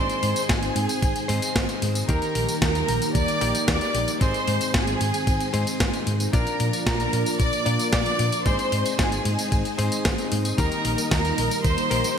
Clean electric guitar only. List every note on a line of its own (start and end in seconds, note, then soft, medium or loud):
0.00 1.26 G#2 medium
0.00 1.26 C4 medium
0.00 1.26 D#4 medium
0.00 1.26 G#4 medium
0.00 1.26 C5 medium
1.28 2.05 G#2 medium
1.28 2.05 C4 medium
1.28 2.05 D#4 medium
1.28 2.05 G#4 medium
1.28 2.05 C5 medium
2.08 3.38 D#3 loud
2.08 3.38 A#3 medium
2.08 3.38 D#4 medium
2.08 3.38 G4 medium
2.08 3.38 A#4 medium
3.41 4.18 D#3 medium
3.41 4.18 A#3 medium
3.41 4.18 D#4 medium
3.41 4.18 G4 medium
3.41 4.18 A#4 medium
4.20 5.51 G#2 medium
4.20 5.51 C4 medium
4.20 5.51 D#4 medium
4.20 5.51 G#4 medium
4.20 5.51 C5 medium
5.53 6.30 G#2 medium
5.53 6.30 C4 medium
5.53 6.30 D#4 medium
5.53 6.30 G#4 medium
5.53 6.30 C5 medium
6.33 7.63 A#2 loud
6.33 7.63 D4 medium
6.33 7.63 F4 medium
6.33 7.63 A#4 medium
6.33 7.63 D5 medium
7.66 8.43 A#2 medium
7.66 8.43 D4 medium
7.66 8.43 F4 medium
7.66 8.43 A#4 medium
7.66 8.43 D5 medium
8.45 9.75 G#2 medium
8.45 9.75 C4 medium
8.45 9.75 D#4 medium
8.45 9.75 G#4 medium
8.45 9.75 C5 medium
9.78 10.55 G#2 medium
9.78 10.55 C4 medium
9.78 10.55 D#4 medium
9.78 10.55 G#4 medium
9.78 10.55 C5 medium
10.58 11.88 D#3 loud
10.58 11.88 A#3 medium
10.58 11.88 D#4 medium
10.58 11.88 G4 medium
10.58 11.88 A#4 medium
11.91 12.18 D#3 medium
11.91 12.18 A#3 medium
11.91 12.18 D#4 medium
11.91 12.18 G4 medium
11.91 12.18 A#4 medium